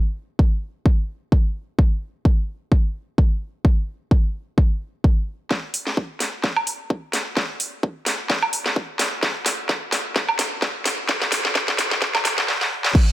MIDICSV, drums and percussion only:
0, 0, Header, 1, 2, 480
1, 0, Start_track
1, 0, Tempo, 465116
1, 1843, Time_signature, 4, 2, 24, 8
1, 13540, End_track
2, 0, Start_track
2, 0, Title_t, "Drums"
2, 404, Note_on_c, 9, 36, 106
2, 507, Note_off_c, 9, 36, 0
2, 883, Note_on_c, 9, 36, 105
2, 986, Note_off_c, 9, 36, 0
2, 1363, Note_on_c, 9, 36, 104
2, 1466, Note_off_c, 9, 36, 0
2, 1843, Note_on_c, 9, 36, 106
2, 1947, Note_off_c, 9, 36, 0
2, 2323, Note_on_c, 9, 36, 98
2, 2427, Note_off_c, 9, 36, 0
2, 2803, Note_on_c, 9, 36, 99
2, 2907, Note_off_c, 9, 36, 0
2, 3284, Note_on_c, 9, 36, 105
2, 3387, Note_off_c, 9, 36, 0
2, 3764, Note_on_c, 9, 36, 109
2, 3867, Note_off_c, 9, 36, 0
2, 4244, Note_on_c, 9, 36, 105
2, 4347, Note_off_c, 9, 36, 0
2, 4724, Note_on_c, 9, 36, 104
2, 4827, Note_off_c, 9, 36, 0
2, 5204, Note_on_c, 9, 36, 105
2, 5307, Note_off_c, 9, 36, 0
2, 5683, Note_on_c, 9, 36, 116
2, 5683, Note_on_c, 9, 38, 46
2, 5786, Note_off_c, 9, 38, 0
2, 5787, Note_off_c, 9, 36, 0
2, 5922, Note_on_c, 9, 46, 111
2, 6025, Note_off_c, 9, 46, 0
2, 6055, Note_on_c, 9, 38, 42
2, 6158, Note_off_c, 9, 38, 0
2, 6163, Note_on_c, 9, 36, 108
2, 6267, Note_off_c, 9, 36, 0
2, 6403, Note_on_c, 9, 38, 48
2, 6403, Note_on_c, 9, 46, 89
2, 6506, Note_off_c, 9, 38, 0
2, 6506, Note_off_c, 9, 46, 0
2, 6642, Note_on_c, 9, 38, 49
2, 6643, Note_on_c, 9, 36, 113
2, 6746, Note_off_c, 9, 36, 0
2, 6746, Note_off_c, 9, 38, 0
2, 6775, Note_on_c, 9, 76, 63
2, 6878, Note_off_c, 9, 76, 0
2, 6883, Note_on_c, 9, 46, 97
2, 6986, Note_off_c, 9, 46, 0
2, 7123, Note_on_c, 9, 36, 108
2, 7226, Note_off_c, 9, 36, 0
2, 7362, Note_on_c, 9, 38, 59
2, 7362, Note_on_c, 9, 46, 95
2, 7465, Note_off_c, 9, 38, 0
2, 7465, Note_off_c, 9, 46, 0
2, 7603, Note_on_c, 9, 36, 120
2, 7603, Note_on_c, 9, 38, 60
2, 7706, Note_off_c, 9, 36, 0
2, 7706, Note_off_c, 9, 38, 0
2, 7842, Note_on_c, 9, 46, 113
2, 7946, Note_off_c, 9, 46, 0
2, 8083, Note_on_c, 9, 36, 120
2, 8186, Note_off_c, 9, 36, 0
2, 8322, Note_on_c, 9, 38, 62
2, 8322, Note_on_c, 9, 46, 93
2, 8425, Note_off_c, 9, 38, 0
2, 8425, Note_off_c, 9, 46, 0
2, 8562, Note_on_c, 9, 38, 66
2, 8563, Note_on_c, 9, 36, 123
2, 8665, Note_off_c, 9, 38, 0
2, 8666, Note_off_c, 9, 36, 0
2, 8694, Note_on_c, 9, 76, 61
2, 8798, Note_off_c, 9, 76, 0
2, 8802, Note_on_c, 9, 46, 113
2, 8905, Note_off_c, 9, 46, 0
2, 8934, Note_on_c, 9, 38, 62
2, 9037, Note_off_c, 9, 38, 0
2, 9043, Note_on_c, 9, 36, 116
2, 9146, Note_off_c, 9, 36, 0
2, 9282, Note_on_c, 9, 38, 72
2, 9282, Note_on_c, 9, 46, 96
2, 9385, Note_off_c, 9, 38, 0
2, 9385, Note_off_c, 9, 46, 0
2, 9521, Note_on_c, 9, 38, 75
2, 9523, Note_on_c, 9, 36, 121
2, 9625, Note_off_c, 9, 38, 0
2, 9626, Note_off_c, 9, 36, 0
2, 9761, Note_on_c, 9, 38, 78
2, 9761, Note_on_c, 9, 46, 121
2, 9865, Note_off_c, 9, 38, 0
2, 9865, Note_off_c, 9, 46, 0
2, 10001, Note_on_c, 9, 38, 77
2, 10003, Note_on_c, 9, 36, 121
2, 10105, Note_off_c, 9, 38, 0
2, 10106, Note_off_c, 9, 36, 0
2, 10242, Note_on_c, 9, 38, 79
2, 10242, Note_on_c, 9, 46, 95
2, 10345, Note_off_c, 9, 38, 0
2, 10345, Note_off_c, 9, 46, 0
2, 10483, Note_on_c, 9, 36, 125
2, 10483, Note_on_c, 9, 38, 84
2, 10586, Note_off_c, 9, 36, 0
2, 10586, Note_off_c, 9, 38, 0
2, 10615, Note_on_c, 9, 76, 61
2, 10718, Note_off_c, 9, 76, 0
2, 10722, Note_on_c, 9, 38, 85
2, 10722, Note_on_c, 9, 46, 119
2, 10825, Note_off_c, 9, 38, 0
2, 10825, Note_off_c, 9, 46, 0
2, 10963, Note_on_c, 9, 36, 123
2, 10963, Note_on_c, 9, 38, 79
2, 11066, Note_off_c, 9, 36, 0
2, 11066, Note_off_c, 9, 38, 0
2, 11203, Note_on_c, 9, 38, 88
2, 11203, Note_on_c, 9, 46, 103
2, 11306, Note_off_c, 9, 38, 0
2, 11306, Note_off_c, 9, 46, 0
2, 11442, Note_on_c, 9, 38, 96
2, 11443, Note_on_c, 9, 36, 123
2, 11546, Note_off_c, 9, 36, 0
2, 11546, Note_off_c, 9, 38, 0
2, 11575, Note_on_c, 9, 38, 79
2, 11678, Note_off_c, 9, 38, 0
2, 11682, Note_on_c, 9, 38, 103
2, 11682, Note_on_c, 9, 46, 119
2, 11786, Note_off_c, 9, 38, 0
2, 11786, Note_off_c, 9, 46, 0
2, 11815, Note_on_c, 9, 38, 85
2, 11919, Note_off_c, 9, 38, 0
2, 11923, Note_on_c, 9, 36, 120
2, 11923, Note_on_c, 9, 38, 102
2, 12026, Note_off_c, 9, 36, 0
2, 12026, Note_off_c, 9, 38, 0
2, 12056, Note_on_c, 9, 38, 86
2, 12159, Note_off_c, 9, 38, 0
2, 12163, Note_on_c, 9, 38, 99
2, 12163, Note_on_c, 9, 46, 93
2, 12266, Note_off_c, 9, 38, 0
2, 12266, Note_off_c, 9, 46, 0
2, 12295, Note_on_c, 9, 38, 89
2, 12399, Note_off_c, 9, 38, 0
2, 12403, Note_on_c, 9, 36, 124
2, 12403, Note_on_c, 9, 38, 96
2, 12506, Note_off_c, 9, 36, 0
2, 12507, Note_off_c, 9, 38, 0
2, 12536, Note_on_c, 9, 38, 93
2, 12536, Note_on_c, 9, 76, 62
2, 12639, Note_off_c, 9, 38, 0
2, 12639, Note_off_c, 9, 76, 0
2, 12643, Note_on_c, 9, 38, 101
2, 12643, Note_on_c, 9, 46, 110
2, 12746, Note_off_c, 9, 38, 0
2, 12746, Note_off_c, 9, 46, 0
2, 12776, Note_on_c, 9, 38, 97
2, 12879, Note_off_c, 9, 38, 0
2, 12884, Note_on_c, 9, 38, 59
2, 12987, Note_off_c, 9, 38, 0
2, 13016, Note_on_c, 9, 38, 67
2, 13119, Note_off_c, 9, 38, 0
2, 13256, Note_on_c, 9, 38, 84
2, 13359, Note_off_c, 9, 38, 0
2, 13363, Note_on_c, 9, 36, 123
2, 13364, Note_on_c, 9, 49, 104
2, 13467, Note_off_c, 9, 36, 0
2, 13467, Note_off_c, 9, 49, 0
2, 13540, End_track
0, 0, End_of_file